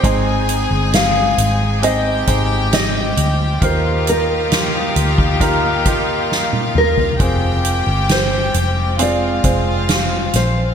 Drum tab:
HH |x-x-x-x-x-x-x-x-|x-x-x-x-x-x-----|x-x-x-x-x-x-x-x-|
SD |----o-------o---|----o-------o---|----o-------o-o-|
T1 |----------------|-------------o--|----------------|
T2 |----------------|--------------o-|----------------|
FT |----------------|---------------o|----------------|
BD |o---------o-----|o------oo-o-----|o---------o-----|